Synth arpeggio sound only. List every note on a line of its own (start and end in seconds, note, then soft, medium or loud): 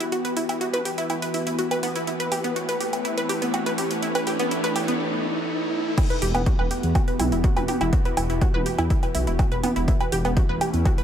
0.00 0.09 E4 medium
0.12 0.22 F#4 medium
0.25 0.36 B4 medium
0.37 0.46 E4 medium
0.49 0.60 E4 medium
0.61 0.67 F#4 medium
0.73 0.79 B4 loud
0.85 0.97 G4 medium
0.98 1.07 E4 loud
1.10 1.15 E4 medium
1.22 1.34 B4 medium
1.34 1.43 E4 medium
1.47 1.58 E4 medium
1.59 1.64 F#4 medium
1.71 1.76 B4 loud
1.83 1.95 B3 loud
1.96 2.04 E4 medium
2.07 2.17 E4 medium
2.20 2.31 B4 medium
2.32 2.37 G4 medium
2.44 2.53 B3 loud
2.56 2.62 F#4 medium
2.69 2.74 B4 medium
2.81 2.92 G4 medium
3.05 3.14 E4 medium
3.17 3.29 B4 loud
3.29 3.35 G4 loud
3.42 3.51 B3 medium
3.54 3.59 F#4 medium
3.66 3.72 B4 medium
3.78 3.90 G4 medium
4.03 4.12 E4 medium
4.15 4.26 B4 loud
4.27 4.33 G4 loud
4.39 4.48 B3 loud
4.51 4.61 E4 medium
4.64 4.75 B4 loud
4.76 4.81 G4 loud
4.88 4.97 B3 medium
5.98 6.07 E4 medium
6.10 6.21 B4 loud
6.22 6.28 G4 loud
6.35 6.43 B3 loud
6.46 6.52 F#4 medium
6.59 6.64 B4 loud
6.71 6.83 G4 medium
6.95 7.05 F#4 medium
7.08 7.19 B4 medium
7.20 7.29 E4 medium
7.32 7.41 E4 medium
7.44 7.50 F#4 medium
7.57 7.62 B4 loud
7.68 7.80 G4 medium
7.81 7.90 E4 loud
7.93 8.02 F#4 medium
8.05 8.17 B4 medium
8.17 8.27 E4 medium
8.30 8.41 E4 medium
8.42 8.47 F#4 medium
8.54 8.59 B4 loud
8.66 8.78 G4 medium
8.78 8.87 E4 loud
8.90 8.96 E4 medium
9.03 9.14 B4 medium
9.15 9.24 E4 medium
9.27 9.39 E4 medium
9.39 9.45 F#4 medium
9.52 9.57 B4 loud
9.64 9.75 B3 loud
9.76 9.85 E4 medium
9.88 9.97 E4 medium
10.01 10.12 B4 loud
10.12 10.18 G4 loud
10.25 10.34 B3 loud
10.37 10.42 F#4 medium
10.49 10.54 B4 loud
10.61 10.73 G4 medium
10.86 10.95 F#4 medium
10.98 11.04 B4 medium